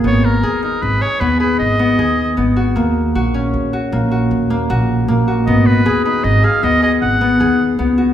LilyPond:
<<
  \new Staff \with { instrumentName = "Oboe" } { \time 7/4 \key gis \minor \tempo 4 = 155 cis''8 ais'4 ais'8 b'8 cis''8 b'8 b'8 dis''2 r4 | r1. r4 | dis''8 b'4 b'8 dis''8 eis''8 dis''8 dis''8 fis''2 r4 | }
  \new Staff \with { instrumentName = "Harp" } { \time 7/4 \key gis \minor b4 gis'8 dis'4 gis'8 b8 gis'4 b8 gis'4 b8 fis'8 | ais4 fis'8 cis'4 fis'8 ais8 fis'4 ais8 fis'4 ais8 fis'8 | b4 gis'8 dis'4 gis'8 b8 gis'4 b8 gis'4 b8 fis'8 | }
  \new Staff \with { instrumentName = "Upright bass" } { \clef bass \time 7/4 \key gis \minor gis,,4 dis,4 gis,,8 r8 dis,4 gis,,4 dis,4 gis,,4 | dis,4 ais,,4 dis,8 r8 ais,,4 dis,4 ais,,4 ais,,4 | gis,,4 dis,4 gis,,8 r8 dis,4 gis,,4 dis,4 cis,4 | }
>>